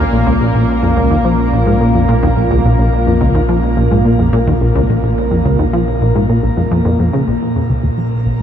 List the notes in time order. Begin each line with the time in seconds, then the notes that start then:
Already playing: A#1 A#2 A#3 C#4 F4 F5
0.12 A#1
0.27 C#2
0.41 A#1
0.55 A#1
0.83 F2
0.97 C#2
1.11 D#2
1.25 F3
1.53 A#1
1.67 G#2
1.81 A#2
1.95 F2
2.09 A#2
2.23 D#2
2.37 A#1
2.51 C#2
2.65 A#1
2.79 A#1
3.07 F2
3.21 C#2
3.35 D#2
3.49 F3
3.77 A#1
3.91 G#2
4.05 A#2
4.19 F2
4.33 A#2
4.47 D#2
4.61 A#1
4.75 C#2
4.89 A#1
5.03 A#1
5.31 F2
5.45 C#2
5.59 D#2
5.73 F3
6.01 A#1
6.15 G#2
6.29 A#2
6.43 A#1
6.57 F2
6.71 F2
6.85 F2
6.99 F2
7.13 C#3
7.27 A#1 A#2 A#4
7.55 F2
7.59 A#3
7.69 C#2
7.83 D#2
7.98 F3
8.25 A#1